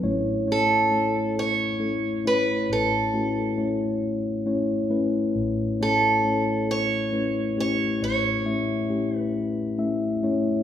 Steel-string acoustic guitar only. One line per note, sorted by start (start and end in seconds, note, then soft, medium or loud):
0.52 1.34 A4 medium
1.39 2.27 C#5 medium
2.27 2.72 B4 medium
2.73 3.67 A4 medium
5.83 6.66 A4 medium
6.71 7.59 C#5 medium
7.60 8.03 C#5 medium
8.04 9.18 C#5 medium
9.18 9.76 B4 medium